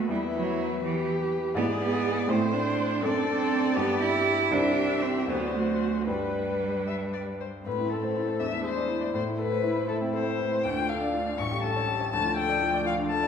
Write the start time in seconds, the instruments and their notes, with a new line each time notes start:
Already playing: grand piano D#2 B3 F#4 A4
0.07 grand piano E2 B3 E4 B4, cello G3, viola E4, violin B4
0.35 cello F#3
0.83 cello E3, viola G4
1.55 grand piano G#2 B3 E4 D5, cello B3, viola G#4, violin D5
1.81 cello B3
2.28 grand piano A2 C4 E4 C5, cello A3, viola C5, violin C5
2.53 cello D4
3.01 grand piano F#2 A3 D4 D5, cello C4, viola A4, violin D5
3.28 cello C4
3.76 grand piano G2 G3 D4 D5, cello B3, viola G4
4.01 cello E4
4.51 grand piano C2 G3 E4 C5, cello D4, viola G4, violin E5
5.03 cello C4
5.27 grand piano D2 F#3 D4 C5, cello B3, viola F#4, violin C5
5.55 cello A3
6.07 grand piano G2 G3 D4 B4, cello G3, violin B4, viola B4
6.87 violin E5
7.13 violin D5
7.40 violin C5
7.65 grand piano A2, cello A3, viola C4, violin B4
7.80 grand piano E4
7.90 violin A4, grand piano A4
8.03 grand piano C5
8.16 grand piano E4
8.28 grand piano C5
8.40 grand piano E2, cello G#3, viola D4, violin E5
8.53 grand piano E4
8.64 grand piano G#4, violin C5
8.77 grand piano D5
8.88 grand piano E4
9.01 grand piano D5
9.14 grand piano A2, cello A3, viola E4, violin C5
9.27 grand piano E4
9.38 grand piano A4, violin B4
9.52 grand piano C5
9.63 grand piano E4
9.76 grand piano C5
9.88 grand piano E4, violin A4
10.01 grand piano C4
10.13 grand piano A4, violin C5
10.26 grand piano C5
10.38 grand piano B4
10.52 grand piano C5
10.64 grand piano D2, viola D4, violin G5
10.77 grand piano F4
10.89 grand piano A4, violin F5
11.01 grand piano D5
11.14 grand piano F4
11.26 grand piano D5
11.38 grand piano A1, cello G3, viola C#4, violin C#6
11.51 grand piano G4
11.63 grand piano A4, violin A5
11.76 grand piano C#5
11.88 grand piano G4
12.00 grand piano C#5
12.12 grand piano D2, cello F3, viola A3, violin A5
12.24 grand piano F4
12.36 grand piano A4, violin G5
12.49 grand piano D5
12.61 grand piano F4
12.74 grand piano D5
12.85 grand piano F4, violin F5
12.99 grand piano D4
13.10 grand piano A4, violin A5
13.23 grand piano D5